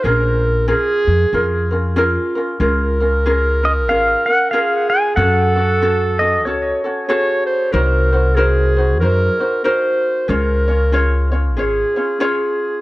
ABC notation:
X:1
M:4/4
L:1/8
Q:"Swing" 1/4=94
K:Bbm
V:1 name="Pedal steel guitar"
z8 | [K:Db] z3 e f g f a | g3 e d3 z | z8 |
z8 |]
V:2 name="Clarinet"
B2 A3 z F2 | [K:Db] B6 A2 | =A4- A z d c | B2 A2 B2 c2 |
B3 z A2 A2 |]
V:3 name="Ukulele"
[DFAB]2 [DFAB]2 [DFAB] [DFB] [DFAB] [DFB] | [K:Db] [DFAB] [DFB] [DFAB] [DFB] [DFAB] [DB] [DFAB]2 | [DG=A] [DGA] [DGA] [DGA] [DGA] [DGA] [DG_A=A]2 | [EGBc] [EGc] [EGBc] [EGc] [EGBc] [EGc] [EGBc]2 |
[DFAd] [DFd] [DFAd] [DFd] [DFAd] [DFd] [DFAd]2 |]
V:4 name="Upright bass" clef=bass
B,,,3 F,, F,,4 | [K:Db] D,,4 A,,, z3 | G,,4 D,, z3 | C,,4 G,, z3 |
D,,4 A,,, z3 |]